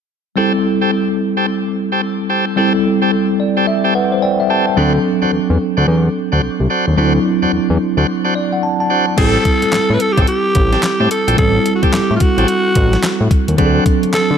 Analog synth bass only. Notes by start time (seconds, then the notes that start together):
4.78 D2
5.22 E2
5.32 E2
5.50 E2
5.78 D2
5.88 E2
6.33 D2
6.43 C2
6.60 C2
6.88 D#2
6.98 D2
7.43 E2
7.53 E2
7.70 E2
7.97 D2
9.18 A1
9.62 A2
9.73 A2
9.90 A2
10.17 A1
10.56 A1
11.00 A2
11.28 A#1
11.38 A1
11.83 A2
11.93 A2
12.11 A2
12.38 A1
12.76 A1
13.21 A2
13.48 D#2
13.58 D2
14.03 D3
14.13 D3
14.31 D3